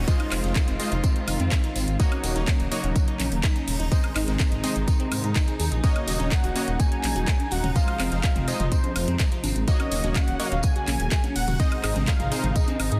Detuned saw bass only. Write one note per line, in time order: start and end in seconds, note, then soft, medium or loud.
0.32 0.40 F1 medium
0.44 0.52 F1 medium
0.68 0.76 F1 medium
0.92 1.00 F1 medium
1.28 1.36 F1 loud
1.40 1.48 F2 medium
1.76 1.84 G#1 loud
1.88 1.96 G#1 medium
2.24 2.32 D#1 loud
2.36 2.44 D#1 medium
2.60 2.68 D#1 medium
2.84 2.92 D#1 medium
3.20 3.28 A#1 medium
3.32 3.40 D#1 medium
3.68 3.76 D#1 loud
3.80 3.88 D#1 medium
4.16 4.24 G#1 loud
4.28 4.36 G#1 medium
4.52 4.60 G#1 medium
4.76 4.84 G#1 medium
5.12 5.20 G#2 medium
5.24 5.32 G#2 medium
5.60 5.68 D#2 medium
5.72 5.80 A#1 medium
6.08 6.16 D#1 loud
6.20 6.28 D#1 medium
6.44 6.52 D#1 medium
6.68 6.76 D#1 medium
7.04 7.12 A#1 loud
7.16 7.24 D#1 medium
7.52 7.60 D#1 loud
7.64 7.72 D#1 medium
8.00 8.08 F1 loud
8.12 8.20 F1 medium
8.36 8.44 F1 medium
8.60 8.68 F1 medium
8.96 9.04 F1 medium
9.08 9.16 F2 medium
9.44 9.52 G#1 medium
9.56 9.64 G#1 medium
9.92 10.00 D#1 loud
10.04 10.12 D#1 medium
10.28 10.36 D#1 medium
10.52 10.60 D#1 medium
10.88 10.96 A#1 medium
11.00 11.08 D#1 medium
11.36 11.44 D#1 medium
11.48 11.56 D#1 medium
11.84 11.92 G#1 loud
11.96 12.04 G#1 medium
12.20 12.28 G#1 medium
12.44 12.52 G#1 medium
12.80 12.88 G#1 medium
12.92 13.00 G#2 medium